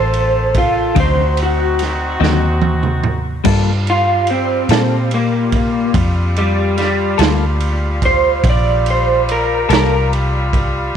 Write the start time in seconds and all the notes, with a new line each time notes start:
Already playing: A1 A#3 F4 A4 C5
0.14 ride
0.54 F4, kick, ride
0.95 D2 D3 F#3 C4 D#4 F#4, kick, ride
1.00 C5
1.37 ride
1.43 F#4
1.79 snare, ride
2.20 D#2 D3 F#3 C4 D#4, snare
2.62 high tom
2.83 mid tom
3.04 mid tom
3.44 G2 G3 A#3 F4 A4, kick, crash
3.87 F4, ride
4.27 C4, ride
4.69 A#2 G3 A#3 F4 A4, snare, ride
5.11 A#3, ride
5.52 kick, ride
5.94 F2, kick, ride
6.36 G3, ride
6.78 G3, snare, ride
7.18 D2 G3 A#3 F4 A4, snare, ride
7.60 ride
8.02 C5, kick, ride
8.44 A#1, kick, ride
8.49 D5
8.86 ride
8.90 C5
9.29 A#4, ride
9.69 C2 G3 A#3 F4 A4 A#4, snare, ride
10.13 ride
10.53 kick, ride